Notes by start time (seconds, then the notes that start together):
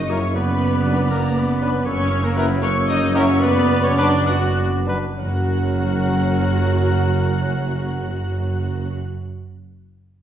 Already playing: F#1 F#2 A#3 D#5 C#6
0.09 F#3 C#4 E4 A#4 C#5 E5 C#6
0.35 B3 B4 D5 B5 D6
0.85 F#3 D4 B4
1.11 A#3 A#4 A#5
1.35 B3 B4 B5
1.60 F#3 D4 B4
1.85 F#1 F#2 A#3 C#4 C#5 C#6 E6
2.24 A#3 A#4 A#5
2.37 F#3 B3 E4 A#4 B4 B5
2.62 A#3 C#4 C#5 C#6 E6
2.89 D#4 D#5 D#6
3.15 F#3 C#4 E4 A#4 C#5 C#6
3.42 B3 B4 D5 B5 D6
3.83 C#4 C#5 C#6
3.97 F#3 D4 B4 D5 D6
4.26 B3 F#4 D5 F#5 D6 F#6
4.86 F#3 D4 B4
5.18 F#1 F#2 F#3 C#4 F#4 A#4 C#5 F#5 F#6